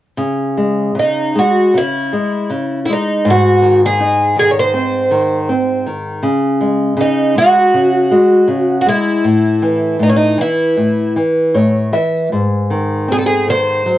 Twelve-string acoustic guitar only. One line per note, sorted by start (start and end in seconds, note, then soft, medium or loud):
0.99 1.38 D#4 medium
1.38 1.77 F#4 medium
1.78 2.79 E4 medium
2.85 2.90 E4 soft
2.92 3.29 D#4 medium
3.30 3.80 F#4 medium
3.86 4.35 G#4 medium
4.39 4.50 G#4 medium
4.51 4.56 C#5 soft
4.59 5.84 C5 medium
7.01 7.38 D#4 medium
7.38 8.80 F#4 medium
8.81 8.87 F#4 medium
8.89 9.97 E4 medium
10.03 10.08 D#4 medium
10.09 10.15 C#4 soft
10.16 10.40 D#4 medium
10.41 11.13 E4 medium
13.12 13.17 G#4 medium
13.18 13.24 A4 soft
13.26 13.47 G#4 medium
13.50 13.98 C5 medium